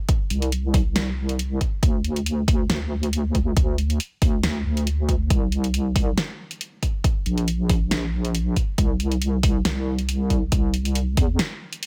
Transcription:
0.09 kick, closed hi-hat
0.30 wobble bass C2, closed hi-hat
0.42 closed hi-hat
0.52 closed hi-hat
0.74 kick, open hi-hat
0.96 snare, closed hi-hat
1.29 closed hi-hat
1.39 closed hi-hat
1.61 kick, closed hi-hat
1.83 wobble bass D2, kick, closed hi-hat
2.04 closed hi-hat
2.16 closed hi-hat
2.26 closed hi-hat
2.48 kick, open hi-hat
2.70 wobble bass D2, snare, closed hi-hat
3.03 closed hi-hat
3.13 closed hi-hat
3.35 kick, closed hi-hat
3.57 wobble bass D2, kick, closed hi-hat
3.78 closed hi-hat
3.90 closed hi-hat
4.00 closed hi-hat
4.22 wobble bass D2, kick, open hi-hat
4.43 snare, closed hi-hat
4.65 wobble bass D2
4.77 closed hi-hat
4.87 closed hi-hat
5.09 kick, closed hi-hat
5.30 wobble bass C2, kick, closed hi-hat
5.52 closed hi-hat
5.64 closed hi-hat
5.74 closed hi-hat
5.96 kick, open hi-hat
6.18 snare, closed hi-hat
6.51 closed hi-hat
6.61 closed hi-hat
6.83 kick, closed hi-hat
7.04 kick, closed hi-hat
7.26 wobble bass A#1, closed hi-hat
7.38 closed hi-hat
7.48 closed hi-hat
7.69 kick, open hi-hat
7.91 snare, closed hi-hat
8.25 closed hi-hat
8.35 closed hi-hat
8.56 kick, closed hi-hat
8.78 wobble bass C2, kick, closed hi-hat
9.00 closed hi-hat
9.12 closed hi-hat
9.22 closed hi-hat
9.43 kick, open hi-hat
9.65 wobble bass C2, snare, closed hi-hat
9.99 closed hi-hat
10.09 closed hi-hat
10.30 kick, closed hi-hat
10.52 wobble bass C2, kick, closed hi-hat
10.74 closed hi-hat
10.85 closed hi-hat
10.95 closed hi-hat
11.17 wobble bass E2, kick, open hi-hat
11.39 snare, closed hi-hat
11.73 closed hi-hat
11.83 closed hi-hat

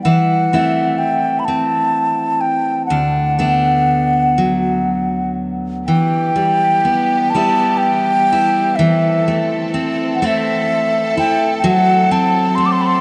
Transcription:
Already playing: steel-string acoustic guitar G3 B3
0.03 steel-string acoustic guitar E3 E4, flute F#5
0.53 steel-string acoustic guitar A3 C4 E4
0.98 flute G5
1.39 flute B5
1.45 steel-string acoustic guitar C4, flute A5
2.41 flute G5
2.86 flute F#5
2.90 steel-string acoustic guitar D2 D4
3.39 steel-string acoustic guitar A3 B3 D4
4.38 steel-string acoustic guitar F#3
5.85 string section E3 B3 G4, steel-string acoustic guitar E3, flute G5
6.36 steel-string acoustic guitar G3
6.85 steel-string acoustic guitar B3
7.30 flute A5
7.35 steel-string acoustic guitar G3 B3 E4
7.78 flute G5
8.33 steel-string acoustic guitar E4
8.76 steel-string acoustic guitar E3, string section C4 A4, flute E5
9.28 steel-string acoustic guitar A3
9.74 steel-string acoustic guitar C4
10.15 flute F#5
10.22 steel-string acoustic guitar A3 C4 E4, flute E5
11.17 steel-string acoustic guitar E4, flute G5
11.59 flute G5
11.64 steel-string acoustic guitar F#3, string section F#3 C4, flute F#5
12.11 steel-string acoustic guitar C4, flute A5
12.55 steel-string acoustic guitar A3, flute C6
12.66 flute D6
12.72 flute C6
12.81 flute B5
12.86 flute C6

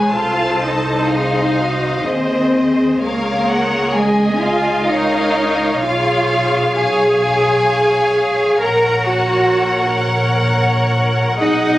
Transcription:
Already playing: double bass section B1, cello section G#3, violin section G#4 G#5, viola section B4 C#5
0.12 double bass section C2, cello section F4, viola section A4 C5, violin section F5 A5
0.62 cello section D#4, violin section D#5
1.09 viola section G#4, violin section F5
1.58 viola section F#4
2.05 double bass section D#2, cello section C4, viola section G#4 C5, violin section C5 D#5
3.01 double bass section C#2, cello section A#3, violin section A#4 F5, viola section C#5
3.49 violin section F#5
3.94 cello section G#3, violin section G#4 G#5, viola section D#5
4.39 cello section F4, violin section F5
4.86 cello section D#4, viola section A#4 C#5, violin section D#5 F5
5.80 double bass section B1, cello section F4, viola section G#4 C#5, violin section F5
6.74 cello section G#4, viola section G#4 C#5, violin section F5 G#5
8.59 double bass section A#1, cello section A#4, viola section A#4 C#5, violin section F#5 A#5
9.06 cello section F#4, violin section F#5
11.39 double bass section B1, cello section D#4, viola section G#4 D#5, violin section D#5 F#5

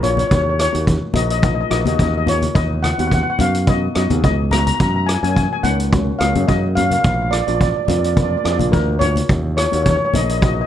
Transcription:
Already playing: fingered electric bass A#1
0.03 steel pan A#3 D4 F4 C#5, closed hi-hat, low conga
0.11 steel pan C#5
0.17 steel pan C#5, closed hi-hat, high conga
0.27 fingered electric bass D#2, steel pan C#5, kick, closed hi-hat
0.35 steel pan C#5
0.42 steel pan C#5
0.50 steel pan C#5
0.59 steel pan C#5, cross-stick, closed hi-hat
0.72 fingered electric bass D#2, steel pan A#3 D#4 F#4, closed hi-hat
0.87 kick, closed hi-hat
1.14 fingered electric bass A#1, steel pan A#3 D#4 F#4 D#5, closed hi-hat, high conga, low conga
1.23 steel pan D#5
1.30 steel pan D#5, closed hi-hat
1.39 steel pan A#3 D#5, closed hi-hat, high conga
1.43 steel pan D#4 F4 D#5, kick
1.54 steel pan D#5
1.61 steel pan D#5
1.70 fingered electric bass A#1, steel pan A#3 D#4 F#4 D#5, cross-stick, closed hi-hat
1.81 steel pan D#5
1.85 fingered electric bass D#2, steel pan A#3 D#4 F#4 D#5, closed hi-hat, high conga
1.94 steel pan D#5
1.99 fingered electric bass D#2, steel pan D#5, kick, closed hi-hat
2.08 steel pan D#5
2.18 steel pan D#5
2.26 steel pan A#3 D#4 F4 C#5, closed hi-hat, low conga
2.42 closed hi-hat, high conga
2.55 fingered electric bass D#2, steel pan D#5, kick, closed hi-hat
2.83 steel pan F#5, cross-stick, closed hi-hat, high conga
2.93 steel pan F#5
2.98 fingered electric bass D#2, steel pan B3 D#4 F#4 F#5, closed hi-hat
3.07 steel pan F#5
3.11 steel pan F#5, kick, closed hi-hat
3.23 steel pan F#5
3.30 steel pan F#5
3.39 fingered electric bass F#2, steel pan B3 D#4 F#4 F5, closed hi-hat, high conga, low conga
3.54 closed hi-hat
3.67 steel pan B3 D#4 F#4 D#5, kick, closed hi-hat
3.95 fingered electric bass F#2, steel pan B3 D#4 F#4 D#5, cross-stick, closed hi-hat
4.10 fingered electric bass D#2, steel pan B3 D#4 G#4, closed hi-hat, high conga, low conga
4.24 fingered electric bass C#2, steel pan D#5, kick, closed hi-hat
4.51 steel pan B3 D#4 F#4 A#5, cross-stick, closed hi-hat, low conga
4.60 steel pan A#5
4.67 steel pan A#5, closed hi-hat, high conga
4.74 steel pan A#5
4.80 fingered electric bass F#2, steel pan A#5, kick, closed hi-hat
4.88 steel pan A#5
4.96 steel pan A#5
5.06 steel pan G#5, cross-stick, closed hi-hat
5.15 steel pan G#5
5.23 fingered electric bass F#2, steel pan A#3 C#4 F#4 G#5, closed hi-hat
5.30 steel pan G#5
5.36 steel pan G#5, kick, closed hi-hat
5.43 steel pan G#5
5.53 steel pan G#5
5.63 fingered electric bass C#2, steel pan A#3 C#4 D#4 F#5, closed hi-hat, high conga, low conga
5.80 closed hi-hat
5.93 steel pan A#3 C#4 F#4, kick, closed hi-hat, high conga
6.19 fingered electric bass C#2, steel pan A#3 C#4 F#4 F5, cross-stick, closed hi-hat
6.35 fingered electric bass F#2, steel pan A#3 C#4 G#4, closed hi-hat, high conga
6.48 fingered electric bass F#2, steel pan D#5, kick, closed hi-hat
6.75 steel pan A#3 C#4 F#4 F5, closed hi-hat, low conga
6.85 steel pan F5
6.91 steel pan F5, closed hi-hat, high conga
6.99 steel pan F5
7.04 fingered electric bass A#1, steel pan F5, kick, closed hi-hat
7.14 steel pan F5
7.22 steel pan F5
7.31 steel pan D5, cross-stick, closed hi-hat
7.41 steel pan D5
7.47 fingered electric bass A#1, steel pan A#3 D4 F4 D5, closed hi-hat
7.55 steel pan D5
7.61 steel pan D5, kick, closed hi-hat
7.70 steel pan D5
7.76 steel pan D5
7.85 fingered electric bass F2, steel pan A#3 D5, high conga, low conga
7.89 steel pan D4 F4 D5, closed hi-hat
7.98 steel pan D5
8.04 steel pan D5, closed hi-hat
8.13 steel pan A#3 D4 F4 D5, kick, closed hi-hat, high conga
8.22 steel pan D5
8.30 steel pan D5
8.37 steel pan D5
8.44 fingered electric bass F2, steel pan A#3 D4 G#4 D5, cross-stick, closed hi-hat
8.51 steel pan D5
8.58 fingered electric bass A#1, steel pan A#3 D4 F4, closed hi-hat, high conga
8.72 fingered electric bass D2, steel pan A#4, kick, closed hi-hat
8.99 steel pan A#3 D4 F4 C#5, closed hi-hat, low conga
9.16 closed hi-hat, high conga
9.29 fingered electric bass D#2, kick, closed hi-hat
9.57 steel pan C#5, cross-stick, closed hi-hat
9.66 steel pan C#5
9.72 fingered electric bass D#2, steel pan A#3 D#4 F#4 C#5, closed hi-hat
9.82 steel pan C#5, kick, closed hi-hat
9.89 steel pan C#5
9.97 steel pan C#5
10.05 steel pan C#5
10.13 fingered electric bass A#1, steel pan A#3 D#4 G#4 D#5, closed hi-hat, high conga, low conga
10.24 steel pan D#5
10.29 steel pan D#5, closed hi-hat
10.38 steel pan D#5
10.42 steel pan A#3 D#4 F#4 D#5, kick, closed hi-hat, high conga
10.54 steel pan D#5
10.61 steel pan D#5

